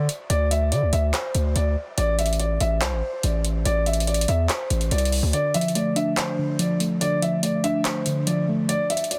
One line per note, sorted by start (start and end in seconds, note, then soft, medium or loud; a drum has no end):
0.09 closed hi-hat medium
0.30 0.73 D2 loud
0.30 0.46 D5 loud
0.30 closed hi-hat medium
0.51 0.67 E5 medium
0.51 closed hi-hat medium
0.72 0.84 D3 medium
0.72 0.88 D5 medium
0.72 closed hi-hat medium
0.82 0.92 D2 loud
0.93 1.13 D2 loud
0.93 1.09 E5 medium
0.93 closed hi-hat medium
1.14 1.53 C5 medium
1.14 clap loud
1.14 closed hi-hat medium
1.35 1.55 D2 loud
1.35 closed hi-hat medium
1.56 1.76 D2 loud
1.56 1.72 D5 medium
1.56 closed hi-hat medium
1.98 2.58 A1 loud
1.98 2.14 D5 loud
1.98 closed hi-hat medium
2.19 2.35 E5 medium
2.19 closed hi-hat medium
2.26 closed hi-hat medium
2.33 closed hi-hat soft
2.40 2.56 D5 medium
2.40 closed hi-hat medium
2.60 2.83 A1 loud
2.60 2.77 E5 medium
2.60 closed hi-hat medium
2.81 2.94 C2 loud
2.81 3.21 C5 medium
2.81 clap loud
2.81 closed hi-hat medium
2.92 3.02 A1 loud
3.23 3.64 A1 loud
3.23 3.40 D5 medium
3.23 closed hi-hat medium
3.45 closed hi-hat medium
3.65 4.26 A1 loud
3.65 3.82 D5 loud
3.65 closed hi-hat medium
3.86 4.03 E5 medium
3.86 closed hi-hat soft
3.93 closed hi-hat medium
4.00 closed hi-hat medium
4.07 4.24 D5 medium
4.07 closed hi-hat medium
4.14 closed hi-hat medium
4.21 closed hi-hat medium
4.28 4.49 E2 loud
4.28 4.45 E5 medium
4.28 closed hi-hat medium
4.49 4.89 C5 medium
4.49 clap loud
4.49 closed hi-hat medium
4.70 4.91 A1 loud
4.70 closed hi-hat medium
4.81 closed hi-hat soft
4.91 5.22 C2 loud
4.91 5.08 D5 medium
4.91 closed hi-hat medium
4.98 closed hi-hat medium
5.05 closed hi-hat medium
5.12 open hi-hat medium
5.23 5.33 D2 loud
5.33 6.37 D3 medium
5.33 5.50 D5 loud
5.33 closed hi-hat medium
5.54 6.58 F3 medium
5.54 5.71 E5 medium
5.54 closed hi-hat medium
5.61 closed hi-hat medium
5.68 closed hi-hat soft
5.75 6.79 A3 medium
5.75 5.92 D5 medium
5.75 closed hi-hat medium
5.96 7.01 D4 medium
5.96 6.12 E5 medium
5.96 closed hi-hat medium
6.17 6.57 C5 medium
6.17 clap loud
6.17 closed hi-hat medium
6.39 7.00 D3 medium
6.59 7.21 F3 medium
6.59 6.75 D5 medium
6.59 closed hi-hat medium
6.80 7.42 A3 medium
6.80 closed hi-hat medium
7.01 8.05 D3 medium
7.01 7.17 D5 loud
7.01 closed hi-hat medium
7.22 8.26 F3 medium
7.22 7.38 E5 medium
7.22 closed hi-hat medium
7.43 8.47 A3 medium
7.43 7.59 D5 medium
7.43 closed hi-hat medium
7.64 8.69 D4 medium
7.64 7.80 E5 medium
7.64 closed hi-hat medium
7.85 8.25 C5 medium
7.85 clap loud
7.85 closed hi-hat medium
8.06 8.69 D3 medium
8.06 closed hi-hat medium
8.27 8.69 F3 medium
8.27 8.43 D5 medium
8.27 closed hi-hat medium
8.49 8.69 A3 medium
8.69 8.85 D5 loud
8.69 closed hi-hat medium
8.90 9.06 E5 medium
8.90 closed hi-hat medium
8.97 closed hi-hat medium
9.04 closed hi-hat soft
9.11 9.19 D5 medium
9.11 closed hi-hat medium